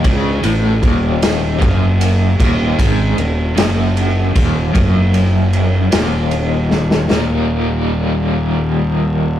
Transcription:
<<
  \new Staff \with { instrumentName = "Overdriven electric guitar" } { \clef bass \time 6/8 \key c \dorian \tempo 4. = 51 des8 a,8 ees,4 ges,4 | ees,8 aes,8 ees,8 ges,4 ees,8 | ges,4. ees,4. | <ees, bes, ees g bes ees'>2. | }
  \new Staff \with { instrumentName = "Fingered electric bass" } { \clef bass \time 6/8 \key c \dorian des,8 a,,8 ees,,4 ges,,4 | ees,,8 aes,,8 ees,,8 ges,,4 ees,,8 | ges,,4. ees,,4. | ees,,2. | }
  \new DrumStaff \with { instrumentName = "Drums" } \drummode { \time 6/8 <bd cymr>8 cymr8 <bd cymr>8 <cymr sn>8 <bd cymr>8 cymr8 | <bd cymr>8 <bd cymr>8 cymr8 <cymr sn>8 cymr8 <bd cymr>8 | <bd cymr>8 cymr8 cymr8 <cymr sn>8 cymr8 sn16 sn16 | sn4. r4. | }
>>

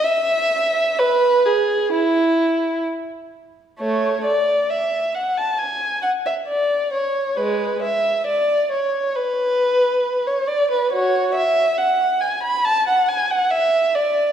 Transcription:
\new Staff \with { instrumentName = "Violin" } { \time 4/4 \key e \major \tempo 4 = 68 e''4 b'8 gis'8 e'4 r4 | \key b \dorian <a cis''>8 d''8 e''8 fis''16 a''16 gis''8 fis''16 e''16 d''8 cis''8 | <gis b'>8 e''8 d''8 cis''8 b'4~ b'16 cis''16 d''16 b'16 | <fis' cis''>8 e''8 fis''8 gis''16 b''16 a''16 fis''16 gis''16 fis''16 e''8 d''8 | }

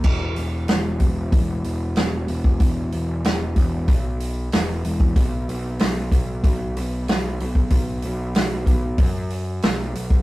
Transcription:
<<
  \new Staff \with { instrumentName = "Picked electric bass" } { \clef bass \time 4/4 \key e \dorian \tempo 4 = 94 e,,8 e,,8 e,,8 e,,8 e,,8 e,,8 e,,8 e,,8 | e,,8 e,,8 e,,8 e,,8 b,,4 e,,8 e,,8 | b,,8 b,,8 b,,8 b,,8 b,,8 b,,8 b,,8 b,,8 | b,,8 b,,8 b,,8 b,,8 fis,4 b,,8 b,,8 | }
  \new DrumStaff \with { instrumentName = "Drums" } \drummode { \time 4/4 <cymc bd>8 hho8 <hho sn>8 <hho bd>8 <hho bd>8 hho8 <hho sn>8 hho16 bd16 | <hho bd>8 hho8 <hho sn>8 <hho bd>8 <hho bd>8 hho8 <hho sn>8 hho16 bd16 | <hho bd>8 hho8 <hho sn>8 <hho bd>8 <hho bd>8 hho8 <hho sn>8 hho16 bd16 | <hho bd>8 hho8 <hho sn>8 <hho bd>8 <hho bd>8 hho8 <hho sn>8 hho16 bd16 | }
>>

